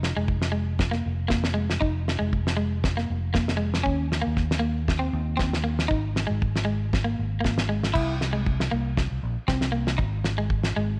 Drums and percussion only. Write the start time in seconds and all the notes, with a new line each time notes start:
0.03 snare
0.28 kick
0.42 snare
0.79 kick, snare
0.93 snare
1.30 kick, snare
1.44 snare
1.70 snare
1.82 kick
2.08 snare
2.33 kick
2.47 snare
2.84 kick, snare
2.98 snare
3.35 kick, snare
3.48 snare
3.74 snare
3.86 kick
4.12 snare
4.37 kick, snare
4.51 snare
4.88 kick, snare
5.39 kick, snare
5.53 snare
5.79 snare
5.91 kick
6.16 snare
6.42 kick
6.56 snare
6.93 kick, snare
7.44 kick, snare
7.58 snare
7.83 snare
7.95 kick, crash
8.21 snare
8.46 kick
8.60 snare
8.97 kick, snare
9.48 kick, snare
9.61 snare
9.87 snare
9.99 kick
10.24 snare
10.50 kick
10.64 snare